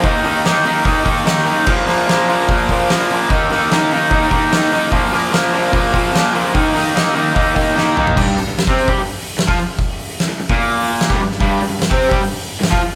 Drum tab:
CC |----------------|x---------------|----------------|----------------|
HH |o-o-o-o-o-o-o-o-|--o-o-o-o-o-o-o-|o-o-o-o-o-o-o-o-|o-o-o-o-o-o-o-o-|
SD |----o-------oo--|--o-o-------oo--|--o-o-------o---|--o-o-------o---|
T2 |----------------|----------------|----------------|----------------|
FT |----------------|----------------|----------------|----------------|
BD |o-------o-o-----|o-------o-o-----|o-------o-o-----|o-------o-o-----|

CC |----------------|x---------------|----------------|----------------|
HH |o-o-o-o-o-o-----|--o-o-o-o-o-o-o-|o-o-o-o-o-o-o-o-|o-o-o-o-o-o-o-o-|
SD |--o-o-------o---|----o-------o---|----o-------o--o|----o-------o---|
T2 |--------------o-|----------------|----------------|----------------|
FT |---------------o|----------------|----------------|----------------|
BD |o-------o-o-----|o----o-o-----o--|o------o-----o--|o----o-o-----o--|